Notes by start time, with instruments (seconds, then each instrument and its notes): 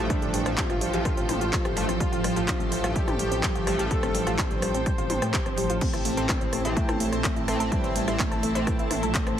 Already playing: ambient pad F3 A4 G5, analog synth pad G4 C5 A5
0.00 analog polysynth G2 F3 A3
0.10 synth pluck G3 G4, analog synth lead D4, kick, cross-stick, closed hi-hat
0.22 detuned saw bass A1, synth pluck G4 G5, closed hi-hat
0.34 detuned saw bass A1, synth pluck G3 G4, open hi-hat
0.46 detuned saw bass A1, analog polysynth G2 F3 A3, synth pluck C4 C5, cross-stick, closed hi-hat
0.57 synth pluck G3 G4, analog synth lead F4, kick, clap, closed hi-hat, mid tom
0.70 detuned saw bass A1, synth pluck F4 F5, cross-stick, closed hi-hat
0.81 detuned saw bass A1, synth pluck G3 G4, open hi-hat
0.93 detuned saw bass A1, analog polysynth G2 F3 A3, synth pluck G4 G5, closed hi-hat
1.05 synth pluck G3 G4, kick, cross-stick, closed hi-hat
1.17 detuned saw bass A1, synth pluck C4 C5, closed hi-hat
1.29 detuned saw bass A1, synth pluck G3 G4, cross-stick, open hi-hat, mid tom
1.41 detuned saw bass A1, synth pluck F4 F5, closed hi-hat
1.53 synth pluck G3 G4, kick, clap, closed hi-hat
1.65 detuned saw bass A1, synth pluck G4 G5, cross-stick, closed hi-hat
1.76 detuned saw bass A1, analog polysynth G2 F3 A3, synth pluck G3 G4, open hi-hat
1.89 detuned saw bass A1, synth pluck C4 C5, cross-stick, closed hi-hat
2.00 synth pluck G3 G4, analog synth lead F4, kick, closed hi-hat
2.12 detuned saw bass A1, synth pluck F4 F5, closed hi-hat
2.24 detuned saw bass A1, synth pluck G3 G4, cross-stick, open hi-hat
2.36 detuned saw bass A1, analog polysynth G2 F3 A3, synth pluck G4 G5, closed hi-hat
2.48 synth pluck G3 G4, kick, cross-stick, clap, closed hi-hat, mid tom
2.60 detuned saw bass A1, synth pluck C4 C5, closed hi-hat
2.72 detuned saw bass A1, synth pluck G3 G4, open hi-hat
2.84 detuned saw bass A1, analog polysynth G2 F3 A3, synth pluck F4 F5, cross-stick, closed hi-hat
2.95 synth pluck G3 G4, analog synth lead G4, kick, closed hi-hat
3.08 detuned saw bass A1, synth pluck G4 G5, cross-stick, closed hi-hat, mid tom
3.19 detuned saw bass A1, synth pluck G3 G4, open hi-hat
3.31 detuned saw bass A1, synth pluck C4 C5, closed hi-hat
3.43 synth pluck G3 G4, kick, cross-stick, clap, closed hi-hat
3.55 detuned saw bass A1, synth pluck F4 F5, closed hi-hat
3.67 detuned saw bass A1, analog polysynth G2 F3 A3, synth pluck G3 G4, cross-stick, open hi-hat
3.79 detuned saw bass A1, analog polysynth G2 F3 A3, synth pluck G4 G5, closed hi-hat
3.91 synth pluck G3 G4, analog synth lead A4, kick, closed hi-hat
4.03 detuned saw bass A1, synth pluck C4 C5, cross-stick, closed hi-hat
4.15 detuned saw bass A1, synth pluck G3 G4, open hi-hat
4.27 detuned saw bass A1, analog polysynth G2 F3 A3, synth pluck F4 F5, cross-stick, closed hi-hat
4.38 synth pluck G3 G4, analog synth lead C5, kick, clap, closed hi-hat, mid tom
4.51 detuned saw bass A1, synth pluck G4 G5, closed hi-hat
4.62 detuned saw bass A1, synth pluck G3 G4, cross-stick, open hi-hat
4.74 detuned saw bass A1, synth pluck C4 C5, closed hi-hat
4.86 synth pluck G3 G4, kick, cross-stick, closed hi-hat
4.98 detuned saw bass A1, synth pluck F4 F5, closed hi-hat
5.10 detuned saw bass A1, synth pluck G3 G4, open hi-hat, mid tom
5.22 detuned saw bass A2, synth pluck G4 G5, cross-stick, closed hi-hat
5.34 synth pluck G3 G4, kick, clap, closed hi-hat
5.46 detuned saw bass G1, synth pluck C4 C5, cross-stick, closed hi-hat
5.57 detuned saw bass A1, synth pluck G3 G4, open hi-hat
5.70 detuned saw bass A1, synth pluck F4 F5, closed hi-hat
5.81 synth pluck A3 A4, analog synth pad C4, analog synth lead C4, ambient pad E4 C5 A5, kick, closed hi-hat, crash
5.93 detuned saw bass A1, synth pluck E4 E5, cross-stick, closed hi-hat
6.05 detuned saw bass A1, synth pluck A3 A4, open hi-hat
6.17 detuned saw bass A1, analog polysynth A2 E3 C4, synth pluck A4 A5, closed hi-hat
6.29 synth pluck A3, kick, cross-stick, clap, closed hi-hat, mid tom
6.37 analog synth pad A4
6.41 detuned saw bass A1, synth pluck C5 C6, closed hi-hat
6.53 detuned saw bass A1, synth pluck A3 A4, cross-stick, open hi-hat
6.65 detuned saw bass A1, analog polysynth A2 E3 C4, synth pluck E4 E5, closed hi-hat
6.76 analog synth lead A3, synth pluck A3 A4, kick, closed hi-hat
6.89 detuned saw bass A1, synth pluck A4 A5, cross-stick, closed hi-hat, mid tom
6.96 analog synth pad E5
7.00 detuned saw bass A1, synth pluck A3 A4, open hi-hat
7.12 detuned saw bass A#1, synth pluck C5 C6, cross-stick, closed hi-hat
7.24 synth pluck A3 A4, kick, clap, closed hi-hat
7.36 detuned saw bass A1, synth pluck E4 E5, closed hi-hat
7.48 detuned saw bass A1, analog polysynth A2 E3 C4, synth pluck A3 A4, cross-stick, open hi-hat
7.60 detuned saw bass A1, analog polysynth A2 E3 C4, synth pluck A4 A5, closed hi-hat
7.72 analog synth lead G3, synth pluck A3 A4, kick, cross-stick, closed hi-hat
7.84 detuned saw bass A1, synth pluck C5 C6, closed hi-hat
7.95 detuned saw bass A1, synth pluck A3 A4, open hi-hat
8.08 detuned saw bass A1, analog polysynth A2 E3 C4, synth pluck E4 E5, cross-stick, closed hi-hat
8.19 synth pluck A3 A4, analog synth lead A3, kick, clap, closed hi-hat, mid tom
8.31 detuned saw bass A1, synth pluck A4 A5, cross-stick, closed hi-hat
8.43 detuned saw bass A1, synth pluck A3 A4, open hi-hat
8.55 detuned saw bass A1, analog polysynth A2 E3 C4, synth pluck C5 C6, closed hi-hat
8.67 synth pluck A3 A4, kick, cross-stick, closed hi-hat
8.79 detuned saw bass A1, synth pluck E4 E5, closed hi-hat
8.91 detuned saw bass A1, synth pluck A3 A4, cross-stick, open hi-hat, mid tom
9.03 detuned saw bass A#1, synth pluck A4 A5, closed hi-hat
9.15 synth pluck A3 A4, kick, clap, closed hi-hat
9.27 detuned saw bass A1, synth pluck C5 C6, cross-stick, closed hi-hat